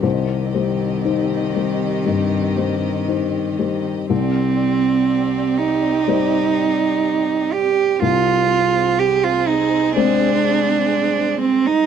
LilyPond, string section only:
\new Staff \with { instrumentName = "String section" } { \time 4/4 \key c \minor \tempo 4 = 61 <c' g' ees''>1 | <c' g' d''>1 | <c' aes' c''>1 | }